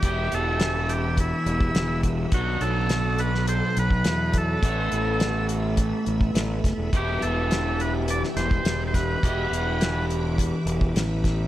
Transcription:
Already playing: transistor combo organ G4, string machine G4 E5 B5
0.02 fingered electric bass E1, overdriven electric guitar E3 B3 E4 G4, string machine E6, kick, closed hi-hat
0.32 fingered electric bass E1, transistor combo organ A4, closed hi-hat
0.60 snare, closed hi-hat
0.89 transistor combo organ G4, closed hi-hat
1.17 transistor combo organ E4, kick, closed hi-hat
1.46 fingered electric bass E1, closed hi-hat
1.61 kick
1.75 fingered electric bass E1, snare, closed hi-hat
2.03 kick, closed hi-hat
2.31 fingered electric bass B1, overdriven electric guitar B2 F#3 B3 D4, transistor combo organ F#4, string machine A4 F#5 B5 D6, kick, closed hi-hat
2.35 overdriven electric guitar F#4
2.61 fingered electric bass B1, transistor combo organ A4, closed hi-hat
2.89 snare, closed hi-hat
3.18 transistor combo organ B4, closed hi-hat
3.35 snare
3.48 transistor combo organ C5, closed hi-hat
3.77 fingered electric bass B1, transistor combo organ B4, closed hi-hat
3.90 kick
4.04 fingered electric bass E2, snare, closed hi-hat
4.33 kick, closed hi-hat
4.38 transistor combo organ A4
4.61 fingered electric bass A1, overdriven electric guitar A3 B3 E4, string machine E5 E6, kick, closed hi-hat
4.66 overdriven electric guitar A4
4.92 fingered electric bass A1, closed hi-hat
5.20 snare, closed hi-hat
5.49 closed hi-hat
5.77 kick, closed hi-hat
6.06 fingered electric bass A1, closed hi-hat
6.21 kick
6.34 fingered electric bass A1, snare, closed hi-hat
6.64 fingered electric bass F#1, kick, snare, closed hi-hat
6.78 fingered electric bass E1
6.92 fingered electric bass E1, overdriven electric guitar E3 B3 E4 G4, string machine G4 D6, kick, closed hi-hat
6.97 transistor combo organ G4
7.22 fingered electric bass E1, transistor combo organ A4, closed hi-hat
7.51 snare, closed hi-hat
7.80 transistor combo organ B4, closed hi-hat
8.08 transistor combo organ D5, closed hi-hat
8.24 snare
8.36 fingered electric bass E1, transistor combo organ C5, snare, closed hi-hat
8.51 kick
8.64 fingered electric bass E1, snare, closed hi-hat
8.87 transistor combo organ C5
8.94 transistor combo organ B4, kick, snare, closed hi-hat
9.23 fingered electric bass E1, overdriven electric guitar E3 B3 E4 G4, kick, closed hi-hat
9.50 fingered electric bass E1, closed hi-hat
9.81 snare, closed hi-hat
10.10 closed hi-hat
10.38 kick, closed hi-hat
10.66 fingered electric bass E1, closed hi-hat
10.81 kick
10.95 fingered electric bass A1, snare, closed hi-hat
11.24 kick, snare, closed hi-hat

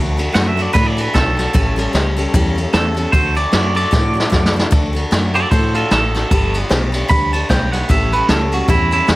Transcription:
Already playing: fretless electric bass D2, steel-string acoustic guitar D3 A3 D4 F#4 A4
0.17 steel-string acoustic guitar D4 F#4 A4, ride
0.33 fretless electric bass F#2, steel-string acoustic guitar A3 D4 F#4 A4, clean electric guitar F#5, snare, ride
0.47 clean electric guitar E5
0.57 steel-string acoustic guitar D4 F#4 A4, ride
0.62 clean electric guitar D5
0.73 fretless electric bass A2, steel-string acoustic guitar D3 A3 D4 F#4 A4, clean electric guitar B4, kick, ride
0.86 clean electric guitar D5
0.97 steel-string acoustic guitar D4 F#4 A4, ride
1.01 clean electric guitar B4
1.14 fretless electric bass B1, steel-string acoustic guitar A3 D4 F#4 A4, clean electric guitar A4, kick, snare, ride
1.37 steel-string acoustic guitar D4 F#4 A4, snare, ride
1.53 fretless electric bass A1, steel-string acoustic guitar A2 E3 G3 C#4 G4 A4, kick, ride
1.76 steel-string acoustic guitar G3 C#4 G4 A4, ride
1.93 fretless electric bass C#2, steel-string acoustic guitar G3 C#4 G4 A4, snare, ride
2.17 steel-string acoustic guitar G3 C#4 G4 A4, ride
2.34 fretless electric bass E2, steel-string acoustic guitar A2 E3 G3 C#4 G4 A4, kick, ride
2.55 steel-string acoustic guitar G3 C#4 G4 A4, ride
2.73 fretless electric bass E2, steel-string acoustic guitar G3 C#4 G4 A4, clean electric guitar A4, snare, ride
2.95 steel-string acoustic guitar G3 C#4 G4 A4, ride
3.12 fretless electric bass D2, steel-string acoustic guitar D3 A3 D4 F#4 A4, clean electric guitar C5, kick, ride
3.35 steel-string acoustic guitar D4 F#4 A4, clean electric guitar D5, ride
3.52 fretless electric bass F#2, steel-string acoustic guitar A3 D4 F#4 A4, snare, ride
3.75 steel-string acoustic guitar D4 F#4 A4, clean electric guitar D5, ride
3.91 fretless electric bass A2, steel-string acoustic guitar D3 A3 D4 F#4 A4, kick, snare
4.14 steel-string acoustic guitar D4 F#4 A4
4.20 snare
4.30 fretless electric bass F#2, steel-string acoustic guitar A3 D4 F#4 A4, kick, snare
4.46 snare
4.54 steel-string acoustic guitar D4 F#4 A4
4.59 snare
4.71 fretless electric bass D2, steel-string acoustic guitar D3 A3 D4 F#4 A4, kick, ride
4.93 steel-string acoustic guitar D4 F#4 A4, ride
5.11 fretless electric bass F#2, steel-string acoustic guitar A3 D4 F#4 A4, snare, ride
5.34 steel-string acoustic guitar D4 F#4 A4, clean electric guitar A4 D5, ride
5.50 fretless electric bass A2, steel-string acoustic guitar D3 A3 D4 F#4 A4, clean electric guitar A4 C5, kick, ride
5.74 steel-string acoustic guitar D4 F#4 A4, clean electric guitar F4 A4, ride
5.91 fretless electric bass A1, steel-string acoustic guitar A3 D4 F#4 A4, clean electric guitar A4, snare, ride
6.14 steel-string acoustic guitar D4 F#4 A4, snare, ride
6.31 fretless electric bass G1, steel-string acoustic guitar G3 D4 G4 B4, kick, ride
6.54 steel-string acoustic guitar D4 G4 B4, ride
6.69 fretless electric bass B1, steel-string acoustic guitar G3 D4 G4 B4, snare, ride
6.92 steel-string acoustic guitar D4 G4 B4, ride
7.08 fretless electric bass D2, steel-string acoustic guitar G3 D4 G4 B4, clean electric guitar B5, kick, ride
7.33 steel-string acoustic guitar D4 G4 B4, clean electric guitar A5, ride
7.49 fretless electric bass B1, steel-string acoustic guitar G3 D4 G4 B4, clean electric guitar G5, kick, snare, ride
7.72 steel-string acoustic guitar D4 G4 B4, clean electric guitar F#5, snare, ride
7.89 fretless electric bass A1, steel-string acoustic guitar A2 E3 G3 C#4 G4 A4, clean electric guitar E5, kick, ride
8.13 steel-string acoustic guitar G3 C#4 G4 A4, clean electric guitar B4, ride
8.29 fretless electric bass C#2, steel-string acoustic guitar G3 C#4 G4, clean electric guitar A4, snare, ride
8.33 steel-string acoustic guitar A4
8.52 steel-string acoustic guitar G3 C#4 G4 A4, clean electric guitar F#4, ride
8.68 fretless electric bass E2, steel-string acoustic guitar A2 E3 G3 C#4 G4 A4, clean electric guitar E4, kick, ride
8.91 steel-string acoustic guitar G3 C#4 G4 A4, clean electric guitar E4, ride
9.07 fretless electric bass E2, steel-string acoustic guitar G3 C#4 G4 A4, snare, ride

